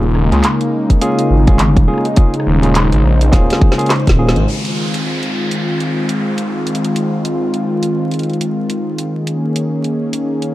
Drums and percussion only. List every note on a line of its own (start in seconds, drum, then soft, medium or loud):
0.15 cross-stick soft
0.32 clap soft
0.32 closed hi-hat soft
0.44 clap loud
0.44 closed hi-hat medium
0.61 closed hi-hat soft
0.90 kick medium
0.90 closed hi-hat soft
1.01 closed hi-hat medium
1.19 closed hi-hat soft
1.47 kick loud
1.47 closed hi-hat soft
1.59 clap loud
1.59 closed hi-hat medium
1.77 kick loud
1.77 closed hi-hat soft
1.88 cross-stick soft
1.94 cross-stick soft
1.98 cross-stick soft
2.05 closed hi-hat soft
2.16 kick loud
2.16 closed hi-hat medium
2.34 closed hi-hat soft
2.40 cross-stick soft
2.63 clap soft
2.63 closed hi-hat soft
2.75 clap loud
2.75 closed hi-hat medium
2.92 closed hi-hat soft
3.21 closed hi-hat medium
3.33 kick loud
3.33 snare medium
3.33 closed hi-hat medium
3.50 snare medium
3.50 closed hi-hat medium
3.61 kick loud
3.72 snare medium
3.79 closed hi-hat soft
3.81 closed hi-hat soft
3.86 snare medium
3.86 clap loud
3.86 closed hi-hat soft
3.90 closed hi-hat medium
3.96 closed hi-hat soft
4.00 closed hi-hat soft
4.07 kick medium
4.07 snare medium
4.07 closed hi-hat soft
4.29 snare loud
4.36 closed hi-hat soft
4.65 closed hi-hat soft
4.94 closed hi-hat medium
5.23 closed hi-hat soft
5.51 closed hi-hat medium
5.80 closed hi-hat soft
6.09 closed hi-hat medium
6.38 closed hi-hat soft
6.67 closed hi-hat medium
6.75 closed hi-hat soft
6.84 closed hi-hat soft
6.96 closed hi-hat medium
7.25 closed hi-hat medium
7.54 closed hi-hat soft
7.83 closed hi-hat medium
8.11 closed hi-hat soft
8.14 closed hi-hat soft
8.19 closed hi-hat soft
8.23 closed hi-hat soft
8.30 closed hi-hat soft
8.33 closed hi-hat soft
8.41 closed hi-hat medium
8.70 closed hi-hat soft
8.98 closed hi-hat medium
9.27 closed hi-hat soft
9.56 closed hi-hat medium
9.84 closed hi-hat soft
10.13 closed hi-hat medium
10.42 closed hi-hat soft